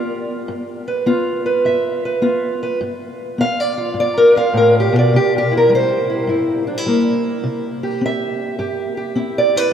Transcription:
0.00 0.46 B3 medium
0.00 0.51 F4 soft
0.00 1.09 D5 medium
0.48 1.03 G2 medium
0.88 1.45 B4 medium
1.06 1.61 B3 medium
1.06 2.21 F4 medium
1.46 2.04 B4 medium
1.65 2.19 G2 medium
1.65 2.79 E5 medium
2.05 2.62 B4 medium
2.22 2.77 B3 medium
2.22 2.78 F4 medium
2.63 2.79 B4 medium
2.81 3.35 G2 medium
3.38 3.92 B3 medium
3.38 3.60 F5 loud
3.60 3.97 D5 medium
3.78 4.35 F4 soft
3.94 4.49 G2 medium
4.00 4.37 D5 medium
4.18 4.36 A#4 medium
4.36 5.10 F4 soft
4.36 4.75 F5 medium
4.53 4.92 A2 medium
4.57 4.75 A#4 medium
4.80 4.96 G4 medium
4.93 5.11 B2 medium
4.99 5.15 D5 medium
5.14 5.67 C3 medium
5.14 5.33 G4 medium
5.38 5.54 G4 medium
5.51 6.09 E4 soft
5.57 5.73 A#4 medium
5.69 6.24 G3 medium
5.75 8.03 C5 medium
6.10 6.29 E4 soft
6.27 6.81 G2 medium
6.27 6.67 E4 soft
6.67 6.78 D4 soft
6.78 7.44 E4 soft
6.86 7.40 G3 medium
6.86 9.16 A#3 soft
7.44 7.97 C3 medium
7.83 8.59 G4 soft
8.01 8.55 C4 medium
8.06 9.38 E5 medium
8.59 9.12 G2 medium
8.59 8.96 G4 soft
8.97 9.57 G4 soft
9.15 9.70 C4 medium
9.15 9.55 E4 soft
9.38 9.73 D5 medium
9.56 9.72 E4 soft
9.56 9.73 B4 medium

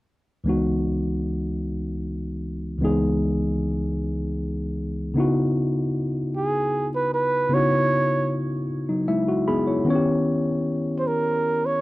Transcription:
0.44 2.76 C#2 medium
0.44 2.76 E3 soft
0.44 2.77 G#3 medium
0.44 2.77 B3 soft
0.48 2.78 D#4 soft
0.48 2.78 F#4 medium
2.79 5.11 C#2 medium
2.79 5.11 E3 soft
2.79 5.12 G#3 medium
2.79 5.13 B3 medium
2.84 5.13 D#4 medium
2.84 5.14 G#4 medium
5.14 7.46 C#3 medium
5.14 7.47 B3 medium
5.14 7.48 D#4 medium
5.18 7.48 E4 medium
5.18 7.49 F#4 medium
6.36 6.89 G#4 medium
6.95 7.12 B4 medium
7.14 7.55 B4 medium
7.49 9.81 C#3 medium
7.49 8.66 B3 soft
7.49 8.67 D#4 soft
7.54 8.68 E4 soft
7.54 8.68 F#4 medium
7.54 8.41 C#5 medium
8.89 9.07 F#3 soft
8.89 9.07 D#4 soft
9.08 9.27 G#3 soft
9.08 9.27 E4 medium
9.08 9.44 E5 medium
9.28 9.46 F#4 medium
9.48 9.67 B3 soft
9.48 9.66 G#4 medium
9.48 9.84 B5 medium
9.67 10.04 E4 soft
9.67 9.89 C#5 soft
9.85 11.81 D#3 medium
9.85 11.81 B3 medium
9.85 11.81 C#4 medium
9.89 9.94 F4 soft
9.89 11.81 C#5 medium
9.95 11.81 G4 medium
10.99 11.09 C5 medium
11.07 11.67 A#4 medium
11.66 11.81 C#5 medium

